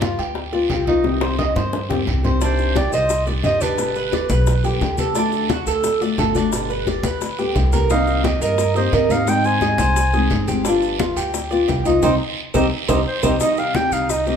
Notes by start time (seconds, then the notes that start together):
Already playing: G2
0.01 G3 B3 F4, high bongo, high conga, short guiro
0.18 D2 G4, high bongo, high conga, short guiro
0.35 muted nylon-string guitar stroke, high bongo, high conga, long guiro
0.53 B3 F4 D5, high bongo, high conga
0.69 C2 G3 B3 F4 G4, high bongo, low bongo, high conga, short guiro
0.87 B3 D#4 F4, high conga, short guiro
1.03 C3 D#3 G3 C4 G4, high bongo, high conga, long guiro
1.21 C5, high bongo, high conga
1.38 D#3 G3 C4 G4 D#5, low bongo, high conga, short guiro
1.55 G2 C5, low bongo, high conga, short guiro
1.73 muted nylon-string guitar stroke, low bongo, high conga, long guiro
1.89 D#3 G3 C4 G4, low bongo, high conga
2.06 C2 D#3 G3 C4 G4, low bongo, low conga, short guiro
2.23 D#3 G3 C4 G4 C5, low bongo, low conga, short guiro
2.41 C3 D#3 G3 D4 G4 C5, high bongo, high conga, long guiro, maracas
2.58 high bongo, high conga, maracas
2.75 D#3 G3 D4 G4 D5, high bongo, high conga, short guiro, maracas
2.92 C2 C5 D#5, high bongo, high conga, short guiro, maracas
3.09 muted nylon-string guitar stroke, high bongo, high conga, long guiro, maracas
3.26 D#3 G3 D4 G4 D5, high bongo, high conga, maracas
3.43 G1 D#3 G3 D4 G4 C5 D#5, high bongo, low bongo, high conga, short guiro, maracas
3.61 D#3 G3 D4 G4 B4, high conga, short guiro, maracas
3.78 B2 D3 G3 B3 G4, high bongo, high conga, long guiro, maracas
3.95 B4, high bongo, high conga, maracas
4.12 D3 G3 B3 G4 D5, high bongo, high conga, short guiro, maracas
4.29 B1 B4, high bongo, high conga, short guiro, maracas
4.47 muted nylon-string guitar stroke, high bongo, long guiro, maracas
4.64 D3 G3 B3 G4, high bongo, high conga, maracas
4.80 D2 D3 G3 B3 G4, high bongo, low bongo, high conga, short guiro, maracas
4.97 D3 G3 B3 G4 A4, high conga, short guiro, maracas
5.15 D3 A3 D4 F#4, high bongo, high conga, long guiro, maracas
5.32 high bongo, high conga, maracas
5.49 D3 A3 D4 F#4, high bongo, high conga, short guiro, maracas
5.67 D2 A4, high bongo, high conga, short guiro, maracas
5.84 muted nylon-string guitar stroke, high bongo, high conga, long guiro, maracas
6.01 A3 D4 F#4 D5, high bongo, high conga, maracas
6.18 G1 D3 A3 D4 F#4 A4, high bongo, low bongo, high conga, short guiro, maracas
6.35 A3 D4 F#4, high conga, short guiro, maracas
6.52 B2 D3 G3 B3 G4, high bongo, high conga, long guiro, maracas
6.69 B4, high bongo, high conga, maracas
6.87 D3 G3 B3 G4 D5, high bongo, high conga, short guiro, maracas
7.03 D2 B4, high bongo, high conga, short guiro, maracas
7.21 muted nylon-string guitar stroke, high bongo, high conga, long guiro, maracas
7.39 D3 G3 B3 G4, high bongo, high conga, maracas
7.55 C2 D3 G3 B3 G4, high bongo, low bongo, high conga, short guiro, maracas
7.73 D3 G3 B3 G4 A#4, high conga, short guiro, maracas
7.90 C3 D#3 A#3 C4 D#4 G4 F5, high bongo, high conga, long guiro, maracas
8.07 high bongo, high conga, maracas
8.24 D#3 A#3 C4 G4 D#5, high bongo, high conga, short guiro, maracas
8.41 G2 A#4 D#5, high bongo, high conga, short guiro, maracas
8.58 muted nylon-string guitar stroke, high bongo, high conga, long guiro, maracas
8.75 D#3 A#3 C4 G4 C5 D#5, high bongo, high conga, maracas
8.92 G#2 D#3 A#3 C4 G4 A#4 D#5, high bongo, low bongo, high conga, short guiro, maracas
9.08 D#3 A#3 C4 D#4 G4 F5, high conga, short guiro, maracas
9.26 D#3 G#3 C4 D#4 G#4 G5, high bongo, high conga, long guiro, maracas
9.44 C5 G#5, high bongo, high conga, maracas
9.61 G#3 C4 D#4 G#4 D#5, high bongo, high conga, short guiro, maracas
9.78 C2 C5, high bongo, high conga, short guiro, maracas
9.96 muted nylon-string guitar stroke, high bongo, high conga, long guiro, maracas
10.13 G#3 C4 D#4 G#4, high bongo, high conga, maracas
10.30 G1 G#3 C4 D#4 G#4, high bongo, low bongo, high conga, short guiro, maracas
10.48 G#3 C4 D#4 G4 G#4, high conga, short guiro, maracas
10.65 G3 B3 D4 F4, high bongo, high conga, long guiro, maracas
10.82 high bongo, high conga, maracas
10.99 G3 B3 F4, high bongo, high conga, short guiro, maracas
11.16 D2 G4, high bongo, high conga, short guiro, maracas
11.34 muted nylon-string guitar stroke, high bongo, high conga, long guiro, maracas
11.51 B3 F4 D5, high bongo, high conga, maracas
11.68 C2 G3 B3 F4 G4, high bongo, low bongo, high conga, short guiro, maracas
11.85 B3 D#4 F4, high conga, short guiro, maracas
12.02 C2 G3 C4 D#4 G4 C5, low bongo, high conga, long guiro, maracas
12.54 C2 G3 C4 D#4 G4 C5, low bongo, high conga, long guiro, maracas
12.89 C2 G3 C4 D#4 G4 C5, low bongo, high conga, long guiro, maracas
13.07 C5
13.23 C2 G3 C4 D#4 G4 C5, low bongo, high conga, long guiro, maracas
13.40 C3 D#3 G3 C4 D#4 G4 D#5, high bongo, high conga, long guiro, maracas
13.57 G4 F5, high bongo, high conga, maracas
13.75 D#3 G3 C4 G4 G5, high bongo, high conga, short guiro, maracas
13.91 C2 D#4 F5, high bongo, high conga, short guiro, maracas
14.09 D#5, muted nylon-string guitar stroke, high bongo, high conga, long guiro, maracas
14.26 D#3 G3 C4 G4 D#5, high bongo, high conga, maracas